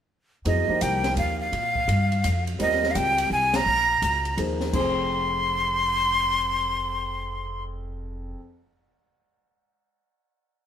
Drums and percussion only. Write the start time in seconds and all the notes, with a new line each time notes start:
0.45 ride
0.81 hi-hat pedal, ride
1.04 snare, ride
1.17 ride
1.53 ride
1.75 kick
1.89 ride
2.12 ride
2.24 hi-hat pedal, ride
2.47 ride
2.60 ride
2.71 snare
2.84 snare
2.95 hi-hat pedal, ride
3.18 ride
3.54 snare, ride
4.02 hi-hat pedal, ride
4.25 ride
4.38 ride
4.60 snare
4.73 kick, crash